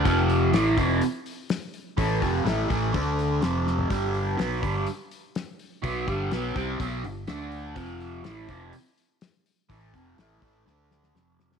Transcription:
<<
  \new Staff \with { instrumentName = "Overdriven electric guitar" } { \clef bass \time 4/4 \key f \lydian \tempo 4 = 124 <f, c f>4 <a, e a>8 <f, c f>8 r2 | <a, e a>8 <f, c f>8 <a, e a>8 <a, e a>8 <d a d'>4 <f, c f>4 | <g, d g>4 <b, fis b>8 <g, d g>8 r2 | <b, fis b>8 <g, d g>8 <b, fis b>8 <c g c'>8 <b, fis b>8 <g, d>8 <d a d'>4 |
<f, c f>4 <a, e a>8 <f, c f>8 r2 | <a, e a>8 <f, c f>8 <a, e a>8 <a, e a>8 <d a d'>4 <f, c f>4 | }
  \new Staff \with { instrumentName = "Fretless electric bass" } { \clef bass \time 4/4 \key f \lydian f,,4 a,,8 f,,8 r2 | a,,8 f,,8 a,,8 a,,8 d,4 f,,4 | g,,4 b,,8 g,,8 r2 | b,,8 g,,8 b,,8 c,8 b,,8 g,,8 d,4 |
f,,4 a,,8 f,,8 r2 | a,,8 r8 a,,8 a,,8 d,4 f,,4 | }
  \new DrumStaff \with { instrumentName = "Drums" } \drummode { \time 4/4 <hho bd>8 hho8 <hho sn>8 <hho bd>8 hho8 hho8 <hho sn>8 hho8 | <hho bd>8 <hho bd>8 <hho sn>8 <hho bd>8 <hho bd>8 hho8 <hho sn>8 sn16 tomfh16 | <hho bd>8 hho8 <hho sn>8 <hho bd>8 hho8 hho8 <hho sn>8 hho8 | <hho bd>8 <hho bd>8 <hho sn>8 <hho bd>8 <hho bd>8 hho8 <hho sn>8 hho8 |
<hho bd>8 hho8 <hho sn>8 <hho bd>8 hho8 hho8 <hho sn>8 hho8 | <hho bd>8 <hho bd>8 <hho sn>8 <hho bd>8 sn8 sn16 sn16 sn8 sn16 sn16 | }
>>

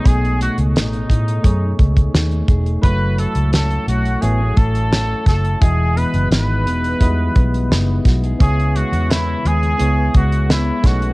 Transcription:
<<
  \new Staff \with { instrumentName = "Trumpet" } { \time 4/4 \key cis \minor \tempo 4 = 86 gis'8 fis'8 dis'4. r4. | b'8 a'8 a'8 fis'8 gis'8 a'4 a'8 | gis'8 b'8 b'2~ b'8 r8 | gis'8 fis'8 e'8 gis'4 fis'8 e'8 fis'8 | }
  \new Staff \with { instrumentName = "Synth keys" } { \time 4/4 \key cis \minor <a dis' gis' cis''>4 r4 <a dis' gis' cis''>4~ <a dis' gis' cis''>16 r8. | <a e' fis' cis''>4~ <a e' fis' cis''>16 r8. <a e' fis' cis''>4~ <a e' fis' cis''>16 r8. | <gis e' fis' dis''>4~ <gis e' fis' dis''>16 r8. <g gis e' fis' dis''>4~ <g gis e' fis' dis''>16 r8. | <b e' gis' cis''>4~ <b e' gis' cis''>16 r8. <b e' gis' cis''>4~ <b e' gis' cis''>16 r16 <a dis' gis' cis''>8 | }
  \new Staff \with { instrumentName = "Clean electric guitar" } { \time 4/4 \key cis \minor b,8 a8 dis'8 a8 dis'8 a8 dis'8 gis'8 | fis,8 a8 cis'8 a8 b16 cis'16 a8 cis'8 a'8 | e8 b8 dis'8 b8 dis'8 b8 dis'8 fis'16 gis'16 | cis8 gis8 b8 gis8 b8 gis8 b8 b,8 | }
  \new Staff \with { instrumentName = "Fingered electric bass" } { \clef bass \time 4/4 \key cis \minor b,,8. cis,16 a,,8 a,8 fis,8 cis,8 dis,8 e,,8 | fis,,8. cis,8. b,,8 a,,8 a,,4 fis,,8 | e,,8. fis,,16 gis,,8 e,,8 e,8 b,,8 fis,,8 b,,8 | cis,8. e,8. dis,8 cis,8 cis,4 b,,8 | }
  \new DrumStaff \with { instrumentName = "Drums" } \drummode { \time 4/4 <hh bd>16 hh16 hh16 hh16 <hh sn>16 hh16 <hh bd>16 hh16 <hh bd>8 <hh bd>16 <hh bd>16 <hh sn>16 hh16 <hh bd>16 hh16 | <hh bd>8 hh16 hh16 <hh sn>16 hh16 hh16 hh16 hh8 <hh bd>16 hh16 <hh sn>8 <hh bd sn>16 hh16 | <hh bd>8 hh16 hh16 <hh sn>8 hh16 hh16 <hh bd>8 <hh bd>16 hh16 <hh sn>8 <hh bd sn>16 hh16 | <hh bd>16 hh16 hh16 hh16 <hh sn>8 hh16 hh16 hh8 <hh bd>16 hh16 <hh sn>8 <hh bd sn>16 hh16 | }
>>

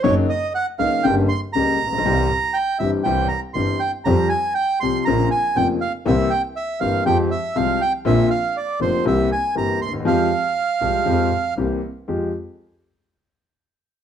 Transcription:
<<
  \new Staff \with { instrumentName = "Bandoneon" } { \time 4/4 \key f \minor \tempo 4 = 120 des''8 ees''8 ges''8 f''8 g''8 c'''8 bes''4~ | bes''4 g''8 e''8 g''8 bes''8 c'''8 g''8 | bes''8 aes''8 g''8 c'''8 bes''8 aes''8 g''8 f''8 | e''8 g''8 e''8 f''8 g''8 e''8 f''8 g''8 |
e''8 f''8 d''8 c''8 e''8 aes''8 bes''8 c'''8 | f''2. r4 | r1 | }
  \new Staff \with { instrumentName = "Grand piano" } { \clef bass \time 4/4 \key f \minor <ges, des ges bes ees'>8 r4 <des, des ges bes ees'>8 <g,, g, des g bes g'>8 r8 <des, des g bes g'>8 r32 a,,32 bes,,32 b,,32 | <c, c e g c' g'>8 r4 <g,, g, e g c' g'>8 <c, c e g c' g'>8 r8 <g,, g, e g c' g'>8 r8 | <f, f g c' g'>8 r4 <c, c f g c' g'>8 <bes,, bes, des bes c' f'>8 r8 <f,, f, des bes c' f'>8 r8 | <c, c e bes c' g'>8 r4 <g,, g, e bes c' g'>8 <f, f aes c' g'>8 r8 <c, c f aes c' g'>8 r8 |
<bes,, bes, d bes c' f'>8 r4 <f,, f, d bes c' f'>8 <c, c e bes c' g'>8 r8 <g,, g, e bes c' g'>8 r32 d,32 ees,32 e,32 | <f, f aes c' g'>8 r4 <c, c f aes c' g'>8 <f, f aes c' g'>8 r8 <c, c e bes c' g'>8 r8 | <f, aes f' g'>8 r2. r8 | }
  \new Staff \with { instrumentName = "Double bass" } { \clef bass \time 4/4 \key f \minor ges,,8 r4 des,8 g,,8 r8 des,8 bes,,8 | c,8 r4 g,,8 c,8 r8 g,,8 r8 | f,8 r4 c,8 bes,,8 r8 f,,8 r8 | c,8 r4 g,,8 f,8 r8 c,8 r8 |
bes,,8 r4 f,,8 c,8 r8 g,,8 ees,8 | f,8 r4 c,8 f,8 r8 c,8 r8 | f,8 r2. r8 | }
>>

